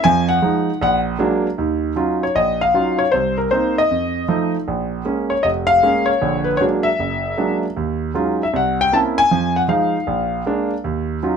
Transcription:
grand piano
0.04 F2 F3 G#5
0.29 F#5
0.42 F3 G#3 D#4
0.81 A#1 F#5
1.19 F#3 G#3 A#3 D4
1.58 D#2 D#3
1.96 F#3 C#4 D#4 F4
2.23 C#5
2.35 A#1 D#5
2.61 F5
2.74 F#3 C#4 D#4 F4
2.99 C#5
3.12 C2 C5
3.38 A#4
3.51 A#3 C4 D#4 C5
3.78 D#5
3.91 F2
4.28 F3 A3 D#4
4.68 A#1
5.05 G#3 A#3 C#4
5.30 C#5
5.43 F1 D#5
5.67 F5
5.83 G#3 A#3 C#4
6.06 C#5
6.22 A#1 D3
6.44 B4
6.57 F#3 G#3 A#3 C#5
6.61 D4
6.83 E5
6.99 F#1
7.37 F#3 G#3 A#3 D4
7.77 D#2
8.14 F#3 G#3 C#4 D#4 F4
8.43 E5
8.53 C2 F#5
8.81 G5
8.92 A#3 C4 C#4 E4 A5
9.18 G#5
9.31 F2 F3
9.56 F#5
9.68 F3 G#3 D#4 F5
10.07 A#1
10.46 G#3 A#3 D4
10.84 D#2
11.23 F#3 C#4 D#4 F4

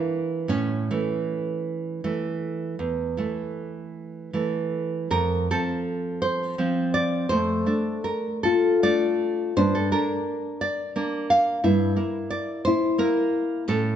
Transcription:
nylon-string guitar
Already playing: E3 A#3 D4 E4
0.48 A2 C#4
0.91 E3 A3
2.04 E3 A3
2.79 E2
3.17 E3 A3
4.33 E3 A3
5.11 F2 A#4
5.51 F3 C4 A4
6.22 C5
6.58 F3 C4
6.94 D5
7.29 F2 A3 C5
7.66 A3 D4
8.04 A#4
8.43 F4 A4
8.83 A3 D4 D5
9.57 G2 D4 C5
9.75 A4
9.92 A#3 D4 A#4
10.61 D5
10.96 A#3 D4
11.30 F5
11.64 G2 E4 E5
11.96 A#3 E4
12.30 D5
12.65 E4 C5
12.98 A#3 E4 A#4
13.68 A2 C#4 A4

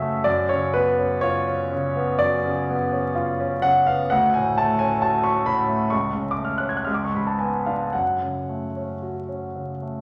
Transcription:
grand piano
Already playing: F#2 C#3 A3 C#4 F#4 E5 F#5
0.02 A3
0.24 F#2 D5
0.49 C#3 C#5
0.74 B3 B4
0.99 C#4
1.21 F4 C#5
1.47 C#4
1.72 C#3
1.96 B3
2.19 F#2 D5
2.46 C#3
2.70 B3
2.92 C#4
3.15 F4
3.40 C#4
3.62 C#3 F#5
3.86 B3 F5
4.10 D2 F#5
4.34 A2 G#5
4.58 A3 A5
4.79 C#4 G#5
5.02 F#4 A5
5.24 C#4 C#6
5.46 A2 B5
5.69 A3
5.90 C#2 C#6
6.15 C#3
6.31 D6
6.37 A3
6.45 F6
6.58 C#4 F#6
6.69 G#6
6.77 F#6
6.85 C#2 F6
6.94 D6
7.05 C#6
7.14 G#2 B5
7.27 A5
7.39 B3 G#5
7.66 D4 F5
7.93 F#2 F#5
8.22 C#3
8.49 A3
8.76 C#4
9.02 F#4
9.29 C#4
9.56 C#3
9.82 A3

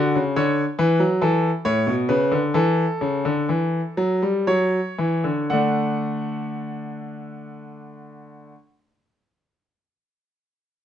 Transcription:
grand piano
Already playing: D3 F#4
0.15 C#3
0.36 D3 C#5
0.79 E3 B4
1.00 F#3
1.22 E3 A4
1.65 A2 C#5
1.87 B2
2.09 C#3 B4
2.32 D3
2.54 E3 A4
3.01 C#3
3.25 D3
3.49 E3
3.97 F#3
4.22 G3
4.47 F#3 C#5
4.98 E3
5.24 D3
5.50 D3 A3 D4 F#5

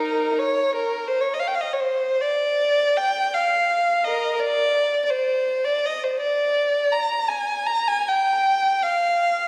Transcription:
violin
Already playing: D#4 A#4
0.38 C#5
0.75 A#4
1.07 C5
1.20 C#5
1.34 D#5
1.39 F5
1.47 G5
1.54 F5
1.61 D#5
1.73 C#5
1.80 C5
2.21 D5
2.97 G5
3.34 F5
4.04 A#4 D#5
4.39 D5
5.05 D5
5.10 C5
5.64 D5
5.86 D#5
6.04 C5
6.20 D5
6.92 A#5
7.28 G#5
7.66 A#5
7.88 G#5
8.08 G5
8.83 F5

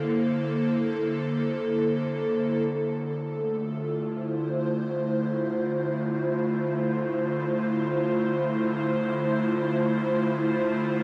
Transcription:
analog synth pad
Already playing: D3 A#3 E4 A4 C5
2.68 D3
3.27 A3
3.56 F4
3.74 E4
4.12 C5

